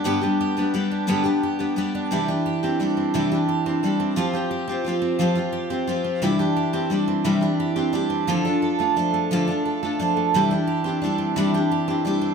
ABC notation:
X:1
M:6/8
L:1/16
Q:3/8=58
K:C
V:1 name="Steel-string acoustic guitar"
[G,,D,G,B,DG] [G,B,DG]2 [G,B,DG] [G,B,DG]2 [G,,D,G,B,DG] [G,B,DG]2 [G,B,DG] [G,B,DG]2 | [C,G,DEG] [DEG]2 [DEG] [G,DEG]2 [C,G,DEG] [DEG]2 [DEG] [G,DEG]2 | [F,CFG] [CFG]2 [CFG] [F,CFG]2 [F,CFG] [CFG]2 [CFG] [F,CFG]2 | [C,G,DEG] [DEG]2 [DEG] [G,DEG]2 [C,G,DEG] [DEG]2 [DEG] [G,DEG]2 |
[D,F,DFA] [DFA]2 [DFA] [F,DFA]2 [D,F,DFA] [DFA]2 [DFA] [F,DFA]2 | [C,G,DEG] [DEG]2 [DEG] [G,DEG]2 [C,G,DEG] [DEG]2 [DEG] [G,DEG]2 |]
V:2 name="Twelve-string acoustic guitar"
[B,DG] B, G B, G D [B,G] B, G B, G D | E, D G C D C E, D G C D C | F, F G C F C F, F G C F C | E, D G C D C E, D G C D C |
F, D A A, D A, F, D A A, D A, | E, D G C D C E, D G C D C |]